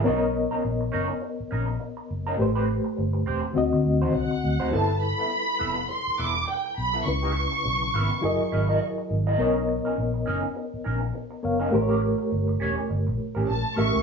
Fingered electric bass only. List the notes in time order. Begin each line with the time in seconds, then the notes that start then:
0.07 B1
0.65 A#1
0.94 F#1
1.40 muted fingered electric bass stroke
1.52 A#1
2.11 F#1
2.39 A1
2.98 G1
3.27 E1
3.57 D2
3.73 D3
3.86 D2
4.02 D#2
4.15 C2
4.44 D2
4.61 D2
4.73 G1
5.61 F1
6.07 muted fingered electric bass stroke
6.19 E1
6.78 B1
7.07 C#2
7.65 B1
7.94 G#1
8.23 F#1
8.40 muted fingered electric bass stroke
8.53 G#1
9.10 G#1
9.39 B1
9.98 A#1
10.28 F#1
10.74 muted fingered electric bass stroke
10.86 A#1
11.45 F#1
11.74 A1
12.32 G1
12.62 E1
12.90 G1
13.07 A#1
13.36 A1
13.49 A#1
13.78 A1
13.95 C#2